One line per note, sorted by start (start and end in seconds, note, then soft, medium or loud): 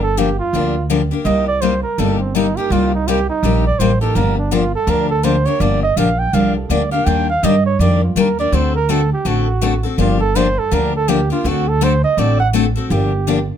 0.00 0.39 G1 medium
0.00 0.20 A4 loud
0.17 0.28 D3 medium
0.17 0.28 F3 medium
0.17 0.28 A#3 loud
0.17 0.29 D4 medium
0.17 0.38 G4 medium
0.17 0.29 G4 medium
0.39 0.86 F4 medium
0.53 1.11 D2 medium
0.53 0.74 D3 medium
0.53 0.74 F3 medium
0.53 0.74 A#3 medium
0.53 0.74 D4 medium
0.53 0.75 G4 medium
0.90 1.00 D3 medium
0.90 1.00 F3 medium
0.90 1.01 A#3 medium
0.90 1.01 D4 medium
0.90 1.01 G4 medium
1.11 1.25 A#3 soft
1.11 1.25 D4 soft
1.11 1.25 G4 medium
1.25 1.83 C2 medium
1.25 1.46 C3 medium
1.25 1.46 G3 medium
1.25 1.46 A#3 medium
1.25 1.46 D#4 medium
1.25 1.46 G4 medium
1.25 1.45 D#5 medium
1.47 1.63 D5 loud
1.61 1.72 C3 medium
1.61 1.73 G3 medium
1.61 1.73 A#3 medium
1.61 1.73 D#4 medium
1.61 1.73 G4 medium
1.61 1.82 C5 medium
1.83 2.01 A#4 medium
1.98 2.56 G1 medium
1.98 2.19 C3 medium
1.98 2.19 G3 medium
1.98 2.19 A#3 medium
1.98 2.19 D#4 medium
1.98 2.19 G4 medium
1.98 2.19 A4 medium
2.20 2.37 C4 medium
2.35 2.45 C3 medium
2.35 2.45 G3 medium
2.35 2.46 A#3 medium
2.35 2.59 D#4 medium
2.35 2.46 D#4 medium
2.35 2.46 G4 loud
2.57 2.71 A#3 soft
2.57 2.71 D#4 medium
2.57 2.70 G4 medium
2.57 2.74 G4 medium
2.70 3.28 C2 medium
2.70 2.91 C3 medium
2.70 2.91 G3 medium
2.70 2.92 A#3 medium
2.70 2.92 D#4 medium
2.70 2.93 F4 medium
2.70 2.92 G4 medium
2.95 3.10 D#4 medium
3.08 3.18 C3 medium
3.08 3.18 G3 medium
3.08 3.18 A#3 medium
3.08 3.18 D#4 loud
3.08 3.29 G4 loud
3.08 3.19 G4 medium
3.29 3.63 D#4 medium
3.43 3.74 A#1 medium
3.43 3.63 C3 medium
3.43 3.64 G3 medium
3.43 3.64 A#3 medium
3.43 3.64 D#4 medium
3.43 3.64 G4 medium
3.66 3.81 D5 loud
3.79 4.10 A1 medium
3.79 3.90 C3 medium
3.79 3.91 G3 medium
3.79 3.91 A#3 medium
3.79 3.91 D#4 medium
3.79 3.91 G4 medium
3.79 4.00 C5 medium
4.01 4.15 A#3 soft
4.01 4.15 D#4 medium
4.01 4.15 G4 medium
4.01 4.17 A4 medium
4.15 4.73 G1 medium
4.15 4.36 D3 medium
4.15 4.36 F3 medium
4.15 4.36 A#3 medium
4.15 4.36 D4 medium
4.15 4.36 G4 medium
4.15 4.37 A#4 loud
4.38 4.55 D4 medium
4.51 4.62 D3 medium
4.51 4.62 F3 medium
4.51 4.63 A#3 loud
4.51 4.63 D4 medium
4.51 4.75 F4 medium
4.51 4.63 G4 medium
4.75 4.92 A4 medium
4.87 5.45 D2 medium
4.87 5.08 D3 medium
4.87 5.08 F3 medium
4.87 5.08 A#3 medium
4.87 5.09 D4 medium
4.87 5.09 G4 medium
4.87 5.09 A#4 medium
5.10 5.26 A4 loud
5.23 5.35 D3 medium
5.23 5.35 F3 medium
5.23 5.35 A#3 medium
5.23 5.35 D4 medium
5.23 5.35 G4 medium
5.23 5.47 C5 medium
5.45 5.60 A#3 medium
5.45 5.60 D4 medium
5.45 5.60 G4 medium
5.45 5.63 C#5 medium
5.60 5.89 G1 medium
5.60 5.81 D3 medium
5.60 5.81 F3 medium
5.60 5.82 A#3 medium
5.60 5.82 D4 medium
5.60 5.82 G4 medium
5.60 5.82 D5 medium
5.83 5.99 D#5 medium
5.96 6.28 A#1 medium
5.96 6.08 D3 medium
5.96 6.08 F3 medium
5.96 6.08 A#3 medium
5.96 6.08 D4 medium
5.96 6.09 G4 loud
5.96 6.20 F5 medium
6.19 6.36 G5 medium
6.33 6.64 C2 medium
6.33 6.54 D3 medium
6.33 6.54 F3 medium
6.33 6.54 A#3 medium
6.33 6.55 D4 medium
6.33 6.55 G4 medium
6.33 6.56 F5 medium
6.56 6.72 A4 medium
6.69 7.01 D2 medium
6.69 6.81 D3 medium
6.69 6.81 F3 medium
6.69 6.81 A#3 medium
6.69 6.81 D4 medium
6.69 6.81 G4 medium
6.69 6.91 D5 medium
6.91 7.06 A#3 medium
6.91 7.06 D4 medium
6.91 7.06 G4 medium
6.91 7.08 F5 medium
7.06 7.36 D#2 medium
7.06 7.27 D#3 medium
7.06 7.27 G3 medium
7.06 7.27 A#3 medium
7.06 7.27 D4 medium
7.06 7.28 G4 medium
7.06 7.28 G5 loud
7.30 7.46 F5 loud
7.43 7.74 G2 medium
7.43 7.54 D#3 medium
7.43 7.54 G3 medium
7.43 7.54 A#3 medium
7.43 7.54 D4 medium
7.43 7.55 G4 loud
7.43 7.65 D#5 loud
7.66 7.82 C#5 medium
7.79 8.10 F2 medium
7.79 8.00 D#3 medium
7.79 8.01 G3 medium
7.79 8.01 A#3 medium
7.79 8.01 D4 medium
7.79 8.01 G4 medium
7.79 8.02 D5 medium
8.04 8.20 F4 medium
8.16 8.47 D#2 medium
8.16 8.27 D#3 medium
8.16 8.27 G3 medium
8.16 8.27 A#3 medium
8.16 8.27 D4 medium
8.16 8.28 G4 loud
8.16 8.39 A#4 medium
8.39 8.53 A#3 soft
8.39 8.53 D4 soft
8.39 8.52 G4 medium
8.39 8.56 D5 loud
8.52 9.11 D2 medium
8.52 8.73 D3 medium
8.52 8.73 A3 medium
8.52 8.74 C4 medium
8.52 8.74 F#4 medium
8.52 8.74 A4 medium
8.52 8.75 C5 medium
8.76 8.92 A#4 loud
8.89 9.00 D3 medium
8.89 9.00 A3 loud
8.89 9.00 C4 loud
8.89 9.00 F#4 loud
8.89 9.12 A4 medium
8.89 9.01 A4 medium
9.13 9.29 G4 medium
9.25 9.84 A1 medium
9.25 9.46 D3 medium
9.25 9.46 A3 medium
9.25 9.46 C4 medium
9.25 9.46 F#4 medium
9.25 9.85 F#4 medium
9.25 9.47 A4 medium
9.61 9.73 D3 medium
9.61 9.73 A3 medium
9.61 9.73 C4 medium
9.61 9.73 F#4 medium
9.61 9.73 A4 medium
9.83 9.98 C4 soft
9.83 9.98 F#4 medium
9.83 9.98 A4 medium
9.98 10.56 G1 medium
9.98 10.19 D3 medium
9.98 10.19 F3 medium
9.98 10.19 A#3 medium
9.98 10.19 D4 medium
9.98 10.19 F4 medium
9.98 10.20 G4 medium
10.20 10.38 A4 loud
10.35 10.46 D3 medium
10.35 10.46 F3 medium
10.35 10.46 A#3 medium
10.35 10.47 D4 loud
10.35 10.47 G4 loud
10.35 10.60 C5 loud
10.59 10.75 A4 medium
10.71 11.30 D2 medium
10.71 10.92 D3 medium
10.71 10.92 F3 medium
10.71 10.92 A#3 medium
10.71 10.93 D4 medium
10.71 10.93 G4 medium
10.71 10.95 A#4 medium
10.96 11.10 A4 medium
11.08 11.19 D3 medium
11.08 11.19 F3 medium
11.08 11.19 A#3 loud
11.08 11.19 D4 medium
11.08 11.30 G4 medium
11.08 11.19 G4 loud
11.30 11.45 A#3 soft
11.30 11.45 D4 medium
11.30 11.50 F4 medium
11.30 11.44 G4 medium
11.44 12.03 D2 medium
11.44 11.65 D3 medium
11.44 11.65 A3 medium
11.44 11.65 C4 medium
11.44 11.66 F#4 medium
11.44 11.66 A4 medium
11.48 11.70 F#4 medium
11.68 11.85 A4 loud
11.81 11.92 D3 medium
11.81 11.92 A3 medium
11.81 11.92 C4 loud
11.81 11.92 F#4 loud
11.81 11.92 A4 loud
11.81 12.04 C5 medium
12.04 12.20 D#5 loud
12.17 12.75 A1 medium
12.17 12.38 D3 medium
12.17 12.38 A3 medium
12.17 12.38 C4 medium
12.17 12.39 F#4 medium
12.17 12.39 A4 medium
12.17 12.39 D5 medium
12.40 12.48 F#5 loud
12.53 12.64 D3 medium
12.53 12.65 A3 medium
12.53 12.65 C4 medium
12.53 12.65 F#4 medium
12.53 12.65 A4 loud
12.76 12.91 C4 medium
12.76 12.90 F#4 medium
12.76 12.89 A4 medium
12.90 13.48 G1 medium
12.90 13.11 D3 medium
12.90 13.11 F3 medium
12.90 13.11 A#3 medium
12.90 13.11 D4 medium
12.90 13.45 G4 medium
12.90 13.11 G4 medium
13.27 13.38 D3 medium
13.27 13.38 F3 medium
13.27 13.38 A#3 medium
13.27 13.38 D4 loud
13.27 13.38 G4 medium